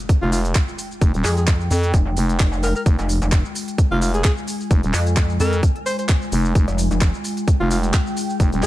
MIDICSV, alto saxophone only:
0, 0, Header, 1, 2, 480
1, 0, Start_track
1, 0, Key_signature, -4, "minor"
1, 0, Tempo, 461538
1, 1056, Time_signature, 4, 2, 24, 8
1, 9014, End_track
2, 0, Start_track
2, 0, Title_t, "Alto saxophone"
2, 0, Program_c, 0, 65
2, 228, Note_on_c, 0, 65, 90
2, 297, Note_off_c, 0, 65, 0
2, 336, Note_on_c, 0, 65, 86
2, 420, Note_off_c, 0, 65, 0
2, 1296, Note_on_c, 0, 68, 88
2, 1380, Note_off_c, 0, 68, 0
2, 1428, Note_on_c, 0, 68, 72
2, 1497, Note_off_c, 0, 68, 0
2, 2738, Note_on_c, 0, 70, 90
2, 2820, Note_off_c, 0, 70, 0
2, 2869, Note_on_c, 0, 70, 81
2, 2938, Note_off_c, 0, 70, 0
2, 4069, Note_on_c, 0, 65, 94
2, 4138, Note_off_c, 0, 65, 0
2, 4177, Note_on_c, 0, 65, 87
2, 4260, Note_off_c, 0, 65, 0
2, 4307, Note_on_c, 0, 68, 89
2, 4376, Note_off_c, 0, 68, 0
2, 4416, Note_on_c, 0, 68, 75
2, 4499, Note_off_c, 0, 68, 0
2, 5617, Note_on_c, 0, 70, 89
2, 5784, Note_off_c, 0, 70, 0
2, 6095, Note_on_c, 0, 72, 91
2, 6179, Note_off_c, 0, 72, 0
2, 6226, Note_on_c, 0, 72, 77
2, 6296, Note_off_c, 0, 72, 0
2, 7907, Note_on_c, 0, 65, 91
2, 7976, Note_off_c, 0, 65, 0
2, 8016, Note_on_c, 0, 65, 80
2, 8099, Note_off_c, 0, 65, 0
2, 8975, Note_on_c, 0, 68, 93
2, 9014, Note_off_c, 0, 68, 0
2, 9014, End_track
0, 0, End_of_file